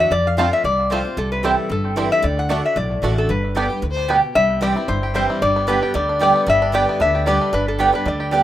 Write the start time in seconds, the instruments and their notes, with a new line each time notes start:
Already playing: steel-string acoustic guitar A3 D4 F#4
0.00 resonator guitar played with a steel bar E5
0.11 upright bass F2, steel-string acoustic guitar F2, resonator guitar played with a steel bar D5
0.27 resonator guitar played with a steel bar F5
0.37 steel-string acoustic guitar F3 A3 C4 F4, five-string banjo A3 C4 F4, mandolin C4 F4 C5 A5, resonator guitar played with a steel bar F5
0.53 resonator guitar played with a steel bar E5
0.64 upright bass C2, steel-string acoustic guitar C3, resonator guitar played with a steel bar D5
0.90 steel-string acoustic guitar F3 A3 C4 F4, five-string banjo A3 C4 F4, mandolin C4 F4 C5 A5, resonator guitar played with a steel bar C5
1.05 steel-string acoustic guitar C4 F4
1.17 upright bass C2, steel-string acoustic guitar C3, resonator guitar played with a steel bar A4
1.32 resonator guitar played with a steel bar B4
1.43 steel-string acoustic guitar E3 G3 C4 E4, five-string banjo G3 C4 E4, mandolin C4 E4 C5 G5, resonator guitar played with a steel bar A4
1.70 upright bass G1, steel-string acoustic guitar G2, resonator guitar played with a steel bar A4
1.96 steel-string acoustic guitar E3 G3 C4 E4, five-string banjo G3 C4 E4, mandolin C4 E4 C5 G5
2.12 resonator guitar played with a steel bar E5
2.22 upright bass D2, steel-string acoustic guitar D3, resonator guitar played with a steel bar D5
2.39 resonator guitar played with a steel bar F#5
2.49 steel-string acoustic guitar D3 A3 D4 F#4, mandolin A3 F#4 D5 A5, five-string banjo A3 D4, resonator guitar played with a steel bar F#5
2.65 resonator guitar played with a steel bar E5
2.76 upright bass B1, steel-string acoustic guitar A2, resonator guitar played with a steel bar D5
3.02 upright bass A1, steel-string acoustic guitar D3 A3 D4 F#4, mandolin A3 F#4 D5 A5, five-string banjo A3 D4
3.18 resonator guitar played with a steel bar A4
3.29 upright bass G1, steel-string acoustic guitar G2, resonator guitar played with a steel bar B4
3.55 steel-string acoustic guitar D3 G3 B3 G4, five-string banjo G3 B3 D4, mandolin B3 G4 D5 G5, fiddle G4
3.70 steel-string acoustic guitar B3 G4
3.82 upright bass D2, steel-string acoustic guitar A2, fiddle B4
3.90 fiddle C5
4.08 steel-string acoustic guitar B2, five-string banjo G3 B3 D4, mandolin B3 G4 D5 G5, fiddle B4
4.16 fiddle G4
4.35 upright bass C2, steel-string acoustic guitar C3, five-string banjo G3, resonator guitar played with a steel bar E5
4.61 steel-string acoustic guitar E3 G3 C4 E4, mandolin C4 E4 C5 G5, five-string banjo G4, resonator guitar played with a steel bar D5
4.75 five-string banjo C4, steel-string acoustic guitar C4 E4
4.88 upright bass G1, steel-string acoustic guitar G2, five-string banjo E4, resonator guitar played with a steel bar C5
5.03 five-string banjo G4
5.14 steel-string acoustic guitar E3 G3 C4 E4, five-string banjo G3, mandolin C4 E4 C5 G5, resonator guitar played with a steel bar C5
5.30 five-string banjo E4
5.42 upright bass G1, steel-string acoustic guitar G2, five-string banjo G3, resonator guitar played with a steel bar D5
5.56 five-string banjo B3
5.67 steel-string acoustic guitar D3 G3 B3 G4, mandolin B3 G4 D5 G5, five-string banjo D4, resonator guitar played with a steel bar B4
5.83 five-string banjo G4
5.94 upright bass D2, steel-string acoustic guitar D3, five-string banjo G3, resonator guitar played with a steel bar D5
6.09 five-string banjo D4
6.19 steel-string acoustic guitar D3 G3 B3 G4, mandolin B3 G4 D5 G5, five-string banjo G4, resonator guitar played with a steel bar D5
6.36 five-string banjo B3
6.46 upright bass G1, steel-string acoustic guitar G2, five-string banjo G3, resonator guitar played with a steel bar E5
6.62 five-string banjo D4
6.72 steel-string acoustic guitar D3 G3 B3 G4, mandolin B3 G4 D5 G5, five-string banjo G4, resonator guitar played with a steel bar D5
6.89 five-string banjo B3
7.00 upright bass D2, steel-string acoustic guitar D3, five-string banjo D4, resonator guitar played with a steel bar E5
7.15 five-string banjo G4
7.26 steel-string acoustic guitar D3 G3 B3 G4, five-string banjo G3, mandolin B3 G4 D5 G5, resonator guitar played with a steel bar D5
7.41 five-string banjo D4
7.53 upright bass G1, steel-string acoustic guitar G2, five-string banjo D4, resonator guitar played with a steel bar B4
7.68 resonator guitar played with a steel bar A4
7.79 steel-string acoustic guitar D3 G3 B3 G4, mandolin B3 G4 D5 G5, five-string banjo G4
7.93 steel-string acoustic guitar B3 G4, five-string banjo D4, resonator guitar played with a steel bar B4
8.05 upright bass D2, steel-string acoustic guitar D3, five-string banjo G3, resonator guitar played with a steel bar D5
8.20 five-string banjo G4
8.31 steel-string acoustic guitar D3 G3 B3 G4, mandolin B3 G4 D5 G5, five-string banjo D4